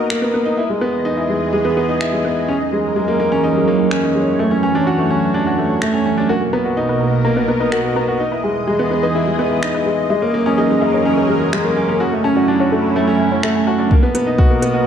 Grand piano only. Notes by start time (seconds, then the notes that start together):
Already playing: A#3 B3 D#4 F#4
0.10 A#3
0.22 B3
0.34 B3
0.46 D#4
0.57 E4
0.69 G#3
0.81 B3
1.05 D#4
1.17 E4
1.29 G#3
1.53 G#3
1.65 B3
1.77 B3
1.89 D#4
2.01 E4
2.13 G#3
2.25 B3
2.48 C#4
2.60 D#4
2.72 G#3
2.96 G#3
3.08 A#3
3.20 A#3
3.32 C#4
3.44 D#4
3.56 G#3
3.68 A#3
3.92 C#4
4.03 D#4
4.15 G#3
4.39 A3
4.51 C#4
4.63 C#4
4.75 D4
4.87 F#4
4.99 A3
5.11 C#4
5.34 D4
5.46 F#4
5.58 A3
5.82 A3
5.94 C#4
6.06 C#4
6.17 D4
6.29 F#4
6.41 A#3
6.53 B3
6.65 F#4
6.77 D#4
6.89 F#4
7.01 A#3
7.25 A#3
7.37 B3
7.48 B3
7.60 D#4
7.72 F#4
7.84 A#3
7.96 B3
8.08 F#4
8.20 D#4
8.32 E4
8.44 G#3
8.68 G#3
8.79 B3
8.91 B3
9.03 D#4
9.15 E4
9.27 G#3
9.39 B3
9.51 E4
9.63 D#4
9.75 E4
9.86 G#3
10.10 G#3
10.22 A#3
10.34 A#3
10.46 C#4
10.58 D#4
10.70 G#3
10.81 A#3
10.93 D#4
11.05 C#4
11.17 D#4
11.29 G#3
11.53 G#3
11.65 A#3
11.77 A#3
11.89 C#4
12.00 F#4
12.12 A3
12.24 C#4
12.36 F#4
12.48 D4
12.60 F#4
12.72 A3
12.96 A3
13.07 C#4
13.19 C#4
13.32 C#4
13.43 A3
13.55 C#4
13.67 F#4
13.79 D4
13.91 A#3
14.03 B3
14.15 B3
14.27 D#4
14.38 F#4
14.50 A#3
14.62 B3
14.74 F#4